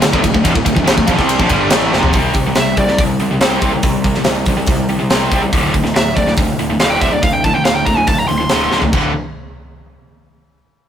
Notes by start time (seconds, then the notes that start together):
0.01 D1 D2 A2, snare, ride
0.12 D1 D2 A2, kick
0.22 D1 D2 A2, kick, ride
0.34 D1 D2 A2, kick
0.44 E1 E2 B2, kick, ride
0.54 D1 D2 A2, kick
0.65 D1 D2 A2, kick, ride
0.75 D1 D2 A2, kick
0.84 A1 A2 E3, snare, ride
0.96 D1 D2 A2, kick
1.06 A#1 A#2 F3, kick, ride
1.17 C2 C3 G3 C4, kick, snare
1.29 ride
1.39 A#1 A#2 F3, kick
1.49 G1 G2 D3 G3, kick, ride
1.70 A1 A2 E3 A3, snare, ride
1.92 F1 F2 C3 F3, snare
2.03 floor tom
2.13 C2 C3 G3 C4, kick, open hi-hat
2.34 C2 C3 G3, kick, open hi-hat
2.47 C3 G3
2.55 C2 C3 G3 E5, snare, open hi-hat
2.77 C2 C3 G3 D5, kick, open hi-hat
2.88 C3 G3, snare
2.98 C2 C3 G3, kick, open hi-hat
3.19 C2 C3 G3, open hi-hat
3.31 C3 G3
3.40 C2 C3 G3 C4, snare, open hi-hat
3.61 C2 C3 G3 C4, kick, open hi-hat
3.73 C3 G3
3.83 C2 C3 G3, kick, open hi-hat
4.04 C3 G3, kick, open hi-hat
4.14 C3 G3, snare
4.24 C2 C3 G3, snare, open hi-hat
4.46 C2 C3 G3, kick, open hi-hat
4.57 C3 G3
4.66 C2 C3 G3, kick, open hi-hat
4.89 C2 C3 G3, open hi-hat
4.99 C3 G3
5.10 C2 C3 G3 C4, snare, open hi-hat
5.32 C2 C3 G3 C4, kick, open hi-hat
5.42 C3 G3
5.53 D1 D2 A2 D3, kick, open hi-hat
5.74 D1 D2 A2, kick, open hi-hat
5.84 D2 A2, snare
5.94 D1 D2 A2 E5, snare, open hi-hat
6.16 D1 D2 A2 D5, kick, open hi-hat
6.27 D2 A2, snare
6.37 D1 D2 A2, kick, open hi-hat
6.59 D1 D2 A2, open hi-hat
6.70 D2 A2
6.80 D1 D2 A2 D3 F5, snare, open hi-hat
6.90 G5
7.01 D1 D2 A2 D3 E5, kick, open hi-hat
7.12 D2 A2 D5
7.23 D1 D2 A2 F5, kick, open hi-hat
7.33 G5
7.44 D2 A2 A5, kick, open hi-hat
7.55 D2 A2 G5
7.65 D1 D2 A2 F5, snare, open hi-hat
7.75 G5
7.85 D1 D2 A2 A#5, kick, open hi-hat
7.97 D2 A2 G#5
8.07 D1 D2 A2 A5, kick, open hi-hat
8.19 A#5
8.28 D1 D2 A2 C6, open hi-hat
8.38 D2 A2 C6
8.49 D1 D2 A2 D3, snare, open hi-hat
8.72 D1 D2 A2 D3, snare
8.82 D2 A2, floor tom
8.93 D1 D2 A2 D3, kick, splash